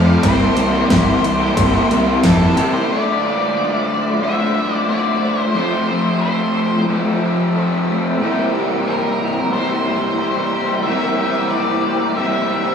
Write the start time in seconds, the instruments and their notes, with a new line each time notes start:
Already playing: fingered electric bass F2, overdriven electric guitar A3, ambient pad C5 F5 A5 D6, lead electric guitar F5
0.07 overdriven electric guitar F3 A3 C4 F4 A4
0.23 fingered electric bass C2, overdriven electric guitar C3 E3 G3 A#3 C4 E4 G4 A#4, ambient pad A#3 E5, lead electric guitar C5, kick, ride
0.56 fingered electric bass C2, overdriven electric guitar G3 A#3 C4 E4 G4 A#4, ride
0.72 overdriven electric guitar G3 C4 E4 A#4
0.89 fingered electric bass C2, overdriven electric guitar C3 E3 G3 A#3 C4 E4 G4 A#4, kick, snare, ride
1.06 overdriven electric guitar A#3 E4 G4
1.23 fingered electric bass C2, muted overdriven electric guitar stroke, ride
1.38 overdriven electric guitar G3 C4 E4 G4 A#4
1.43 overdriven electric guitar A#3
1.57 fingered electric bass C2, kick, ride
1.71 overdriven electric guitar G3 C4 E4 G4 A#4
1.75 overdriven electric guitar A#3
1.89 fingered electric bass C2, overdriven electric guitar G3 C4 E4 A#4, ride
2.23 fingered electric bass F2, overdriven electric guitar C3 E3 G3 A#3 C4 E4 G4 A#4, lead electric guitar A4, kick, snare, ride
2.39 overdriven electric guitar A#3 C4 E4 G4 A#4
2.43 overdriven electric guitar G3
2.56 fingered electric bass C3, overdriven electric guitar G3 A#3 C4 E4 G4 A#4, ride
2.73 overdriven electric guitar G3 A#3 C4 E4 G4 A#4, lead electric guitar C5
2.90 overdriven electric guitar D3 A3 D4 F4, ambient pad F4 C5 E5 D6, lead electric guitar D5
2.94 overdriven electric guitar A4
3.22 overdriven electric guitar A3 D4 F4
4.22 overdriven electric guitar D3 A3 D4 F4, lead electric guitar E5
4.75 lead electric guitar D5
4.88 overdriven electric guitar D3 A3 D4 F4, lead electric guitar D5
5.21 overdriven electric guitar A3 D4 F4
5.41 lead electric guitar C5
5.54 overdriven electric guitar F2 C3 F3 A3 C4 F4 A4, lead electric guitar C5, ambient pad A5 E6
5.88 overdriven electric guitar F3 A3 C4 F4
6.21 lead electric guitar C5
6.87 overdriven electric guitar F2 C3 F3 A3 C4 F4
7.55 overdriven electric guitar F3 A3 C4 F4
7.88 overdriven electric guitar F3 A3 C4 F4
8.20 overdriven electric guitar C3 E3 G3 A#3 E4 G4, ambient pad C5 G5 A#5
8.24 overdriven electric guitar C4 A#4
8.54 overdriven electric guitar A#3 E4 G4
8.88 lead electric guitar A#4
9.53 overdriven electric guitar C3 G3 A#3 E4 G4, lead electric guitar C5
10.19 overdriven electric guitar G3 A#3 E4 G4
10.52 overdriven electric guitar A#3 E4 G4
10.83 overdriven electric guitar C3 E3, lead electric guitar E5
10.87 overdriven electric guitar G3 A#3 C4 E4 G4 A#4
11.19 overdriven electric guitar A#3 E4 G4
11.51 lead electric guitar D5
12.17 overdriven electric guitar C3 G3 A#3 E4 G4, lead electric guitar E5